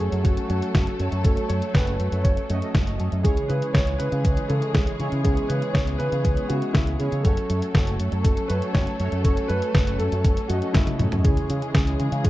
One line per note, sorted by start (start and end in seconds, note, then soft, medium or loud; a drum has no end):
0.00 0.11 F#2 medium
0.00 3.21 F#3 medium
0.00 0.97 A3 medium
0.00 3.21 A3 medium
0.00 0.97 C#4 medium
0.00 5.21 C#4 medium
0.00 0.97 F#4 medium
0.00 0.25 G#4 medium
0.00 3.21 A4 medium
0.00 0.97 C#5 medium
0.12 0.23 F#2 loud
0.12 closed hi-hat soft
0.23 0.35 F#1 loud
0.23 0.47 F#4 medium
0.23 kick loud
0.23 closed hi-hat medium
0.37 closed hi-hat soft
0.48 0.60 F#2 medium
0.48 0.96 F#4 medium
0.48 closed hi-hat medium
0.62 closed hi-hat soft
0.75 0.85 F#1 loud
0.75 kick loud
0.75 snare loud
0.75 closed hi-hat medium
0.87 closed hi-hat soft
1.00 1.10 F#2 medium
1.00 1.22 A3 medium
1.00 1.22 C#4 medium
1.00 1.22 F#4 medium
1.00 1.22 C#5 medium
1.00 closed hi-hat soft
1.12 1.23 F#2 medium
1.12 closed hi-hat soft
1.23 1.35 F#1 loud
1.23 2.47 A3 medium
1.23 2.47 C#4 medium
1.23 2.47 F#4 medium
1.23 1.50 A4 loud
1.23 2.47 C#5 medium
1.23 kick loud
1.23 closed hi-hat medium
1.37 closed hi-hat soft
1.48 1.60 F#2 medium
1.48 1.72 C#5 loud
1.48 closed hi-hat medium
1.62 closed hi-hat soft
1.74 1.96 F#1 loud
1.74 2.26 B4 loud
1.74 kick loud
1.74 snare loud
1.74 closed hi-hat medium
1.87 closed hi-hat soft
2.00 2.10 F#2 medium
2.00 closed hi-hat medium
2.12 2.23 F#2 loud
2.12 closed hi-hat soft
2.24 2.35 F#1 medium
2.24 2.71 C#5 medium
2.24 kick loud
2.24 closed hi-hat medium
2.37 closed hi-hat soft
2.50 2.61 F#2 medium
2.50 2.59 A3 medium
2.50 2.59 C#4 medium
2.50 2.59 F#4 medium
2.50 2.59 D#5 medium
2.50 closed hi-hat medium
2.62 3.22 A3 medium
2.62 3.22 C#4 medium
2.62 3.22 F#4 medium
2.62 3.22 D#5 medium
2.62 closed hi-hat soft
2.75 2.96 F#1 medium
2.75 kick loud
2.75 snare loud
2.75 closed hi-hat medium
2.87 closed hi-hat soft
3.00 3.11 F#2 medium
3.00 closed hi-hat soft
3.12 3.23 F#2 medium
3.12 closed hi-hat soft
3.23 3.35 C#2 medium
3.23 4.97 C#3 medium
3.23 7.21 E3 medium
3.23 7.21 G#3 medium
3.23 4.97 G#3 medium
3.23 4.97 C#4 medium
3.23 4.97 E4 medium
3.23 3.47 G#4 loud
3.23 7.21 G#4 medium
3.23 4.97 C#5 medium
3.23 kick loud
3.23 closed hi-hat medium
3.37 closed hi-hat soft
3.48 3.60 C#3 medium
3.48 3.75 B4 loud
3.48 closed hi-hat medium
3.62 closed hi-hat soft
3.73 3.96 C#2 loud
3.73 4.00 C#5 loud
3.73 kick loud
3.73 snare loud
3.73 closed hi-hat medium
3.87 closed hi-hat soft
3.98 4.10 C#3 medium
3.98 4.51 B4 loud
3.98 closed hi-hat medium
4.12 4.23 C#3 loud
4.12 closed hi-hat soft
4.25 4.35 C#2 medium
4.25 kick loud
4.25 closed hi-hat medium
4.37 closed hi-hat soft
4.48 4.60 C#3 medium
4.48 4.75 A4 loud
4.48 closed hi-hat medium
4.62 closed hi-hat soft
4.73 4.85 C#2 loud
4.73 5.09 G#4 loud
4.73 kick loud
4.73 snare loud
4.73 closed hi-hat medium
4.87 closed hi-hat soft
5.00 5.22 C#3 medium
5.00 5.10 C#3 medium
5.00 5.22 G#3 medium
5.00 5.22 C#4 medium
5.00 5.22 E4 medium
5.00 5.22 C#5 medium
5.00 closed hi-hat soft
5.12 5.23 C#3 medium
5.12 closed hi-hat soft
5.23 5.35 C#2 medium
5.23 6.97 C#3 medium
5.23 6.97 G#3 medium
5.23 7.23 B3 medium
5.23 6.97 C#4 medium
5.23 6.97 E4 medium
5.23 5.50 G#4 loud
5.23 6.97 C#5 medium
5.23 kick loud
5.23 closed hi-hat medium
5.37 closed hi-hat soft
5.48 5.60 C#3 medium
5.48 5.72 B4 loud
5.48 closed hi-hat medium
5.62 closed hi-hat soft
5.73 5.96 C#2 loud
5.73 5.79 C#5 loud
5.73 kick loud
5.73 snare loud
5.73 closed hi-hat medium
5.87 closed hi-hat soft
5.98 6.10 C#3 medium
5.98 6.50 B4 loud
5.98 closed hi-hat medium
6.12 6.23 C#3 loud
6.12 closed hi-hat soft
6.25 6.35 C#2 medium
6.25 kick loud
6.25 closed hi-hat medium
6.37 closed hi-hat soft
6.48 6.61 C#3 medium
6.48 6.75 F#4 medium
6.48 closed hi-hat medium
6.62 closed hi-hat soft
6.73 6.96 C#2 medium
6.73 7.00 E4 medium
6.73 kick loud
6.73 snare loud
6.73 closed hi-hat medium
6.87 closed hi-hat soft
6.98 7.11 C#3 medium
6.98 7.22 G#3 medium
6.98 7.22 C#4 medium
6.98 7.22 E4 medium
6.98 7.22 G#4 medium
6.98 7.22 C#5 medium
6.98 closed hi-hat soft
7.12 7.23 C#3 medium
7.12 closed hi-hat soft
7.23 7.35 F#1 loud
7.23 11.21 F#3 medium
7.23 8.97 A3 medium
7.23 11.21 A3 medium
7.23 12.30 C#4 medium
7.23 8.97 C#4 medium
7.23 8.97 F#4 medium
7.23 8.22 A4 loud
7.23 11.21 A4 medium
7.23 8.97 C#5 medium
7.23 kick loud
7.23 closed hi-hat medium
7.37 closed hi-hat soft
7.50 7.60 F#2 medium
7.50 closed hi-hat medium
7.62 closed hi-hat soft
7.75 7.96 F#1 loud
7.75 kick loud
7.75 snare loud
7.75 closed hi-hat medium
7.87 closed hi-hat soft
8.00 8.10 F#2 medium
8.00 closed hi-hat medium
8.12 8.23 F#2 loud
8.12 closed hi-hat soft
8.23 8.35 F#1 loud
8.23 8.50 A4 loud
8.23 kick loud
8.23 closed hi-hat loud
8.37 closed hi-hat soft
8.48 8.61 F#2 loud
8.48 8.54 B4 loud
8.48 closed hi-hat medium
8.62 closed hi-hat soft
8.73 8.85 F#1 loud
8.73 9.09 C#5 loud
8.73 kick loud
8.73 snare loud
8.73 closed hi-hat medium
8.87 closed hi-hat soft
9.00 9.10 F#2 medium
9.00 9.22 A3 medium
9.00 9.22 C#4 medium
9.00 9.22 F#4 medium
9.00 9.22 C#5 medium
9.00 closed hi-hat soft
9.12 9.23 F#2 medium
9.12 closed hi-hat soft
9.23 9.35 F#1 loud
9.23 10.47 A3 medium
9.23 10.47 C#4 medium
9.23 10.47 F#4 medium
9.23 9.50 A4 loud
9.23 10.47 C#5 medium
9.23 kick loud
9.23 closed hi-hat medium
9.37 closed hi-hat soft
9.48 9.60 F#2 medium
9.48 10.00 B4 loud
9.48 closed hi-hat medium
9.62 closed hi-hat soft
9.75 9.96 F#1 loud
9.75 kick loud
9.75 snare loud
9.75 closed hi-hat loud
9.87 closed hi-hat soft
9.98 10.11 F#2 medium
9.98 10.51 A4 loud
9.98 closed hi-hat medium
10.12 10.23 F#2 loud
10.12 closed hi-hat soft
10.25 10.35 F#1 medium
10.25 kick loud
10.25 closed hi-hat loud
10.37 closed hi-hat soft
10.48 10.60 F#2 loud
10.48 10.59 A3 medium
10.48 10.59 C#4 medium
10.48 10.72 F#4 medium
10.48 10.59 F#4 medium
10.48 10.59 D#5 medium
10.48 closed hi-hat medium
10.62 11.22 A3 medium
10.62 11.22 C#4 medium
10.62 11.22 F#4 medium
10.62 11.22 D#5 medium
10.62 closed hi-hat soft
10.73 10.85 F#1 loud
10.73 11.00 E4 medium
10.73 kick loud
10.73 snare loud
10.73 closed hi-hat medium
10.87 closed hi-hat soft
10.87 high tom soft
10.98 11.11 F#2 loud
10.98 11.04 F#4 medium
10.98 closed hi-hat soft
10.98 mid tom medium
11.12 11.23 F#2 medium
11.12 closed hi-hat soft
11.12 mid tom medium
11.23 11.35 C#2 medium
11.23 12.30 C#3 medium
11.23 12.30 E3 medium
11.23 12.30 G#3 medium
11.23 12.30 C#4 medium
11.23 12.30 E4 medium
11.23 12.22 G#4 loud
11.23 12.30 G#4 medium
11.23 12.30 C#5 medium
11.23 kick loud
11.23 closed hi-hat medium
11.37 closed hi-hat soft
11.50 11.60 C#3 medium
11.50 closed hi-hat medium
11.62 closed hi-hat soft
11.75 11.96 C#2 loud
11.75 kick loud
11.75 snare loud
11.75 closed hi-hat loud
11.87 closed hi-hat soft
12.00 12.10 C#3 medium
12.00 closed hi-hat medium
12.12 12.23 C#3 loud
12.12 closed hi-hat soft
12.23 12.30 C#2 loud
12.23 12.30 G#4 medium
12.23 kick loud
12.23 closed hi-hat loud